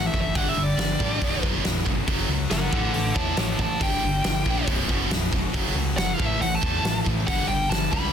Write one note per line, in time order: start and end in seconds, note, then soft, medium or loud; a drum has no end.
0.00 0.12 A2 medium
0.00 0.13 E3 medium
0.00 0.13 A3 medium
0.06 0.20 E5 medium
0.13 0.30 F#1 medium
0.13 0.33 A2 medium
0.13 0.34 E3 medium
0.13 0.34 A3 medium
0.13 kick medium
0.21 0.35 E5 medium
0.35 0.52 G1 medium
0.35 0.56 G2 medium
0.35 0.56 D3 medium
0.35 0.56 G3 loud
0.35 0.49 F#5 medium
0.35 kick loud
0.35 open hi-hat medium
0.49 0.63 E5 medium
0.57 0.73 G1 medium
0.57 0.78 G2 medium
0.57 0.78 D3 medium
0.57 0.79 G3 medium
0.63 1.47 D5 medium
0.77 0.94 G1 medium
0.77 0.99 G2 medium
0.77 1.00 D3 medium
0.77 1.01 G3 medium
0.77 snare loud
0.77 open hi-hat medium
1.00 1.17 A1 medium
1.00 1.20 G2 medium
1.00 1.21 D3 medium
1.00 1.21 G3 medium
1.00 kick medium
1.22 1.38 B0 medium
1.22 1.42 B1 medium
1.22 1.42 F#2 medium
1.22 1.43 B2 medium
1.22 kick loud
1.22 open hi-hat medium
1.43 1.60 F#1 medium
1.43 1.63 B1 medium
1.43 1.63 F#2 medium
1.43 1.64 B2 medium
1.43 kick medium
1.64 1.81 B0 medium
1.64 1.85 B1 medium
1.64 1.86 F#2 medium
1.64 1.87 B2 medium
1.64 snare loud
1.64 open hi-hat medium
1.86 2.03 G1 medium
1.86 2.07 B1 medium
1.86 2.07 F#2 medium
1.86 2.07 B2 medium
1.86 kick medium
2.07 2.25 F#1 medium
2.07 2.29 F#2 medium
2.07 2.30 C#3 medium
2.07 2.30 F#3 loud
2.07 kick loud
2.07 open hi-hat medium
2.29 2.46 C#2 medium
2.29 2.50 F#2 medium
2.29 2.51 C#3 medium
2.29 2.51 F#3 medium
2.50 2.68 F#1 medium
2.50 2.72 F#2 medium
2.50 2.72 C#3 medium
2.50 2.72 F#3 medium
2.50 2.72 A#4 medium
2.50 2.73 F#5 loud
2.50 snare loud
2.50 open hi-hat medium
2.73 2.90 A1 medium
2.73 2.93 A2 medium
2.73 2.93 E3 loud
2.73 2.94 A3 medium
2.73 2.92 A4 medium
2.73 2.93 F#5 loud
2.73 kick loud
2.93 3.11 A1 medium
2.93 3.15 A2 medium
2.93 3.15 E3 medium
2.93 3.16 A3 medium
2.93 3.14 A4 medium
2.93 3.15 F#5 medium
2.93 open hi-hat medium
3.15 3.33 E2 medium
3.15 3.38 A2 medium
3.15 3.38 E3 medium
3.15 3.39 A3 medium
3.15 3.36 C#5 medium
3.15 3.37 A5 loud
3.15 kick medium
3.37 3.54 A1 medium
3.37 3.58 A2 medium
3.37 3.58 E3 medium
3.37 3.59 A3 medium
3.37 3.58 C#5 medium
3.37 3.59 A5 medium
3.37 snare loud
3.37 open hi-hat medium
3.59 3.76 A1 medium
3.59 3.79 A2 medium
3.59 3.80 E3 medium
3.59 3.80 A3 medium
3.59 3.80 C#5 medium
3.59 3.81 A5 loud
3.59 kick medium
3.80 3.98 G1 medium
3.80 4.02 G2 medium
3.80 4.02 D3 loud
3.80 4.03 G3 loud
3.80 4.66 G5 loud
3.80 kick loud
3.80 open hi-hat medium
4.03 4.20 G1 medium
4.03 4.22 G2 medium
4.03 4.23 D3 medium
4.03 4.23 G3 medium
4.23 4.41 G1 medium
4.23 4.44 G2 medium
4.23 4.45 D3 medium
4.23 4.45 G3 medium
4.23 snare loud
4.23 open hi-hat medium
4.45 4.63 A#1 medium
4.45 4.66 G2 medium
4.45 4.66 D3 loud
4.45 4.66 G3 loud
4.45 kick medium
4.67 4.84 B0 medium
4.67 4.88 B1 medium
4.67 4.90 F#2 medium
4.67 4.90 B2 medium
4.67 kick loud
4.67 open hi-hat medium
4.89 5.06 F#1 medium
4.89 5.09 B1 medium
4.89 5.10 F#2 medium
4.89 5.10 B2 medium
4.89 kick medium
5.10 5.27 B0 medium
5.10 5.31 B1 medium
5.10 5.32 F#2 medium
5.10 5.32 B2 medium
5.10 snare loud
5.10 open hi-hat medium
5.32 5.49 F1 medium
5.32 5.53 B1 medium
5.32 5.53 F#2 medium
5.32 5.53 B2 medium
5.32 kick medium
5.54 5.71 F#1 medium
5.54 5.74 F#2 medium
5.54 5.75 C#3 loud
5.54 5.75 F#3 loud
5.54 kick loud
5.54 open hi-hat medium
5.75 5.92 C#2 medium
5.75 5.97 F#2 medium
5.75 5.98 C#3 medium
5.75 5.98 F#3 medium
5.96 6.13 F#1 medium
5.96 6.18 F#2 medium
5.96 6.19 C#3 medium
5.96 6.19 F#3 loud
5.96 6.13 F#5 loud
5.96 snare loud
5.96 open hi-hat medium
6.13 6.25 F5 loud
6.20 6.36 A1 medium
6.20 6.41 A2 medium
6.20 6.41 E3 medium
6.20 6.42 A3 loud
6.20 kick loud
6.25 6.40 E5 loud
6.40 6.57 A1 loud
6.40 6.63 A2 medium
6.40 6.63 E3 medium
6.40 6.64 A3 medium
6.40 6.55 F#5 medium
6.40 open hi-hat medium
6.55 6.97 A5 loud
6.63 6.79 E2 medium
6.63 6.84 A2 medium
6.63 6.84 E3 medium
6.63 6.85 A3 medium
6.63 kick medium
6.83 7.00 A1 loud
6.83 7.06 A2 medium
6.83 7.05 E3 medium
6.83 7.06 A3 medium
6.83 snare loud
6.83 open hi-hat medium
7.06 7.23 A1 medium
7.06 7.26 A2 medium
7.06 7.26 E3 medium
7.06 7.27 A3 medium
7.06 kick medium
7.27 7.44 G1 loud
7.27 7.48 G2 loud
7.27 7.49 D3 loud
7.27 7.49 G3 medium
7.27 7.48 F#5 loud
7.27 kick loud
7.27 open hi-hat medium
7.48 7.65 G1 medium
7.48 7.70 G2 medium
7.48 7.71 D3 medium
7.48 7.71 G3 medium
7.48 7.69 G5 loud
7.69 7.87 G1 medium
7.69 7.91 G2 medium
7.69 7.92 D3 medium
7.69 7.93 G3 medium
7.69 7.91 A5 loud
7.69 snare loud
7.69 open hi-hat medium
7.92 8.09 C#2 medium
7.92 8.13 G2 medium
7.92 8.13 D3 loud
7.92 8.13 G3 loud
7.92 8.13 B5 loud
7.92 kick medium